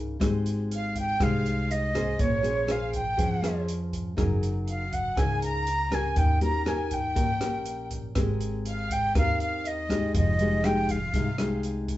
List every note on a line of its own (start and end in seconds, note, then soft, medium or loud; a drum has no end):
0.00 0.16 C#2 medium
0.00 0.17 C#3 soft
0.00 0.16 D#4 medium
0.00 0.16 G#4 medium
0.00 0.16 A#4 medium
0.20 1.16 G#1 loud
0.20 1.17 G#3 medium
0.20 1.15 D#4 soft
0.20 1.15 G4 medium
0.20 1.16 C5 medium
0.20 kick medium
0.20 cross-stick medium
0.20 closed hi-hat medium
0.46 closed hi-hat soft
0.71 0.94 F5 medium
0.71 0.96 F5 medium
0.71 closed hi-hat soft
0.96 1.19 G5 medium
0.96 1.25 G5 loud
0.96 kick soft
0.96 closed hi-hat soft
1.20 2.15 C2 medium
1.20 2.16 G#3 medium
1.20 1.90 D#4 soft
1.20 1.90 G4 soft
1.20 1.90 C5 medium
1.20 1.70 F5 medium
1.20 1.73 F5 medium
1.20 kick medium
1.20 cross-stick medium
1.20 closed hi-hat medium
1.46 closed hi-hat soft
1.70 2.19 D#5 medium
1.70 2.22 D#5 medium
1.70 closed hi-hat soft
1.94 2.40 C#4 medium
1.94 2.40 G#4 medium
1.94 2.40 C5 medium
1.94 kick soft
1.94 cross-stick medium
1.94 closed hi-hat soft
2.18 3.15 A#1 loud
2.18 3.15 A#3 medium
2.18 2.69 C#5 medium
2.18 2.73 C#5 medium
2.18 kick medium
2.18 closed hi-hat soft
2.43 2.64 C#4 medium
2.43 2.64 G#4 medium
2.43 2.64 C5 medium
2.43 closed hi-hat soft
2.67 3.00 C#4 medium
2.67 3.00 G#4 medium
2.67 3.00 C5 medium
2.67 2.93 F5 medium
2.67 cross-stick medium
2.67 closed hi-hat soft
2.71 2.94 F5 medium
2.92 3.63 G5 medium
2.92 3.65 G5 medium
2.92 kick soft
2.92 closed hi-hat soft
3.17 4.14 F2 medium
3.17 4.15 F3 soft
3.17 3.38 C#4 soft
3.17 3.39 G#4 soft
3.17 3.39 C5 medium
3.17 kick medium
3.17 closed hi-hat medium
3.42 4.13 C#4 medium
3.42 4.13 G#4 medium
3.42 4.13 C5 medium
3.42 cross-stick medium
3.42 closed hi-hat soft
3.68 closed hi-hat soft
3.93 kick soft
3.93 closed hi-hat soft
4.17 5.13 F#1 medium
4.17 5.14 F#3 medium
4.17 4.84 D#4 medium
4.17 4.84 G#4 medium
4.17 4.84 A#4 medium
4.17 kick medium
4.17 cross-stick medium
4.17 closed hi-hat medium
4.43 closed hi-hat soft
4.67 4.90 F5 medium
4.67 4.95 F5 medium
4.67 closed hi-hat soft
4.92 5.17 F#5 medium
4.92 5.20 F#5 medium
4.92 kick soft
4.92 closed hi-hat soft
5.16 6.12 C#2 medium
5.16 6.14 C#3 medium
5.16 5.66 D#4 soft
5.16 5.66 G#4 soft
5.16 5.66 A#4 soft
5.16 5.41 G#5 medium
5.16 5.43 G#5 medium
5.16 kick medium
5.16 cross-stick medium
5.16 closed hi-hat medium
5.41 5.88 A#5 medium
5.41 5.96 A#5 loud
5.41 closed hi-hat soft
5.67 closed hi-hat soft
5.91 6.37 C#4 medium
5.91 6.37 G4 medium
5.91 6.37 A#4 medium
5.91 6.16 G#5 medium
5.91 6.19 G#5 medium
5.91 kick soft
5.91 cross-stick medium
5.91 closed hi-hat soft
6.16 7.12 D#2 medium
6.16 7.13 D#3 medium
6.16 6.42 G5 medium
6.16 kick soft
6.16 closed hi-hat soft
6.41 6.62 C#4 medium
6.41 6.62 G4 medium
6.41 6.62 A#4 medium
6.41 6.64 A#5 medium
6.41 6.69 A#5 medium
6.41 closed hi-hat soft
6.65 6.98 C#4 medium
6.65 6.98 G4 medium
6.65 6.98 A#4 medium
6.65 6.91 G#5 medium
6.65 6.95 G#5 medium
6.65 cross-stick medium
6.65 closed hi-hat soft
6.91 7.91 G5 medium
6.91 kick soft
6.91 closed hi-hat soft
7.15 8.11 A#1 medium
7.15 8.12 A#2 medium
7.15 7.30 C#4 soft
7.15 7.30 G4 soft
7.15 7.30 A#4 medium
7.15 kick medium
7.15 closed hi-hat medium
7.40 8.11 C#4 medium
7.40 8.11 G4 medium
7.40 8.11 A#4 medium
7.40 cross-stick medium
7.40 closed hi-hat soft
7.65 closed hi-hat soft
7.91 kick soft
7.91 closed hi-hat soft
8.15 9.11 G#1 medium
8.15 9.12 G#3 medium
8.15 9.11 C4 soft
8.15 9.11 G4 medium
8.15 9.11 A#4 medium
8.15 kick medium
8.15 cross-stick medium
8.15 closed hi-hat medium
8.41 closed hi-hat soft
8.65 8.89 F5 medium
8.65 8.94 F5 medium
8.65 closed hi-hat soft
8.90 9.15 G5 medium
8.90 9.16 G5 medium
8.90 kick soft
8.90 closed hi-hat soft
9.15 10.10 D#2 medium
9.15 10.11 D#3 soft
9.15 9.85 C4 soft
9.15 9.85 G4 medium
9.15 9.86 A#4 medium
9.15 9.38 F5 medium
9.15 9.39 F5 medium
9.15 kick medium
9.15 cross-stick soft
9.15 closed hi-hat medium
9.40 9.63 F5 medium
9.40 9.69 F5 medium
9.40 closed hi-hat soft
9.64 10.13 D#5 medium
9.64 10.15 D#5 medium
9.64 closed hi-hat soft
9.89 10.34 G#3 medium
9.89 10.35 D#4 medium
9.89 10.35 G4 medium
9.89 kick soft
9.89 cross-stick medium
9.89 closed hi-hat soft
10.14 11.09 F1 loud
10.14 11.11 F3 medium
10.14 10.60 D#5 medium
10.14 10.67 D#5 medium
10.14 kick medium
10.14 closed hi-hat medium
10.39 10.60 G#3 medium
10.39 10.60 D#4 medium
10.39 10.60 G4 medium
10.39 closed hi-hat soft
10.63 10.96 G#3 medium
10.63 10.96 D#4 medium
10.63 10.96 G4 medium
10.63 10.88 G5 medium
10.63 10.92 G5 medium
10.63 cross-stick medium
10.63 closed hi-hat soft
10.88 11.62 F5 medium
10.88 11.64 F5 medium
10.88 kick soft
10.88 closed hi-hat soft
11.14 11.97 C2 medium
11.14 11.97 C3 soft
11.14 11.28 G#3 soft
11.14 11.29 D#4 soft
11.14 11.28 G4 soft
11.14 kick medium
11.14 closed hi-hat soft
11.38 11.97 G#3 medium
11.38 11.97 D#4 medium
11.38 11.97 G4 medium
11.38 cross-stick medium
11.38 closed hi-hat soft
11.63 closed hi-hat soft
11.88 kick soft
11.88 closed hi-hat soft